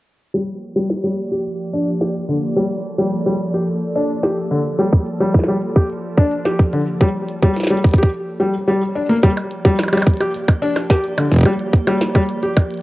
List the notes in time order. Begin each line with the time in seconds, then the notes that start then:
0.34 F3 G3 A#3 G4 D5, closed hi-hat
0.62 closed hi-hat
0.64 closed hi-hat
0.67 closed hi-hat
0.76 G3
0.90 snare
1.04 G3
1.32 G4
1.45 closed hi-hat
1.73 D4, closed hi-hat
1.87 closed hi-hat
2.01 G4, snare, closed hi-hat
2.15 closed hi-hat
2.29 D3, closed hi-hat
2.56 G3 A4, closed hi-hat
2.70 closed hi-hat
2.84 closed hi-hat
2.98 G3, closed hi-hat
3.12 closed hi-hat
3.26 G3, closed hi-hat
3.54 G4, closed hi-hat
3.68 closed hi-hat
3.81 closed hi-hat
3.95 D4, closed hi-hat
4.00 closed hi-hat
4.05 closed hi-hat
4.09 closed hi-hat
4.14 closed hi-hat
4.18 closed hi-hat
4.23 G4, snare, closed hi-hat
4.37 closed hi-hat
4.51 D3
4.79 F3 G3, closed hi-hat
4.93 kick
5.06 closed hi-hat
5.20 G3, closed hi-hat
5.34 kick, snare, closed hi-hat
5.39 snare
5.44 snare
5.48 G3, closed hi-hat
5.53 closed hi-hat
5.57 closed hi-hat
5.62 closed hi-hat
5.76 G4, kick
5.90 closed hi-hat
6.18 D4, kick, closed hi-hat
6.32 closed hi-hat
6.45 G4, snare, closed hi-hat
6.59 kick, closed hi-hat
6.73 D3, closed hi-hat
7.01 G3, kick, closed hi-hat
7.29 closed hi-hat
7.43 G3, kick, closed hi-hat
7.57 snare, closed hi-hat
7.60 snare
7.63 snare
7.67 G3, snare, closed hi-hat
7.77 closed hi-hat
7.84 kick, closed hi-hat
7.87 closed hi-hat
7.89 closed hi-hat
7.91 closed hi-hat
7.94 kick, closed hi-hat
7.96 G4, closed hi-hat
7.98 closed hi-hat
8.03 kick
8.40 G3
8.68 G3
8.95 D4
9.09 A#3
9.23 F3 G3 A#3 G4 D5, kick, closed hi-hat
9.37 percussion blips
9.51 closed hi-hat
9.65 G3, kick, closed hi-hat
9.79 snare, closed hi-hat, percussion blips
9.83 percussion blips
9.88 percussion blips
9.93 G3, closed hi-hat, percussion blips
9.96 closed hi-hat, percussion blips
10.00 closed hi-hat, percussion blips
10.03 kick, closed hi-hat
10.07 closed hi-hat
10.10 closed hi-hat
10.14 closed hi-hat
10.17 G4, closed hi-hat
10.20 closed hi-hat, percussion blips
10.34 closed hi-hat
10.48 kick, closed hi-hat, percussion blips
10.62 D4
10.76 snare, closed hi-hat, percussion blips
10.90 G4, kick, snare, closed hi-hat
11.04 closed hi-hat
11.18 D3, closed hi-hat, percussion blips
11.32 kick, snare
11.34 kick
11.36 kick
11.38 kick
11.41 kick
11.43 G3, kick, closed hi-hat, percussion blips
11.59 closed hi-hat
11.73 kick, closed hi-hat
11.87 G3, closed hi-hat, percussion blips
12.01 snare, closed hi-hat
12.15 G3, kick, closed hi-hat, percussion blips
12.29 closed hi-hat
12.43 G4, closed hi-hat
12.57 kick, closed hi-hat, percussion blips
12.70 closed hi-hat
12.74 closed hi-hat
12.77 closed hi-hat